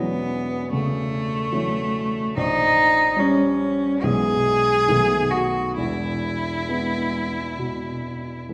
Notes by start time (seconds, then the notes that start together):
Already playing: E1 E2 E3 F#3 B3 C#4
0.72 C#3 A3
1.52 E3 F#3 C#4
2.37 A#1 D#4
3.17 G3 C#4
4.03 B1 E3 G#3 B3 G#4
4.88 B1 D#3 A3 B3
5.31 F#4
5.77 E1 E2 E4
6.68 E3 G#3 B3
7.59 B2
8.48 E3 G#3 B3